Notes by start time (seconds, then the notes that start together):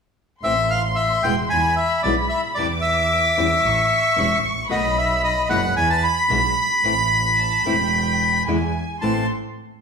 0.43 A1 E3 A3 C4 E4 E5 C6
0.70 F5
0.95 E5
1.23 E1 B2 E3 G#3 B3 E4 G5
1.49 E2 G#5 B5
1.76 E5
2.03 B1 B2 E3 G#3 B3 E4 D5
2.29 E5
2.55 E2 C3 E3 G3 C4 D5 D6
2.59 E4
2.81 E5
3.37 E2 E3 G3 C#4 E4
3.63 A1 C#6
4.17 E1 E3 G3 C#4 E4
4.44 A1
4.69 B1 B2 D#3 A3 B3 F#4 D#5 B5
4.98 E5
5.24 D#5
5.49 F#1 B2 E3 G#3 B3 E4 F#5
5.77 E2 G#5 B5
5.90 A5
6.04 B5
6.29 B1 B2 E3 G#3 B3 E4
6.83 A1 E3 A3 C4 E4 B5
7.38 A5
7.64 E1 E3 A3 C4 E4 G5
8.46 E2 B2 D3 G#3 B3 E4 G#5
9.01 A1 A2 E3 A3 C4 E4 A5 C6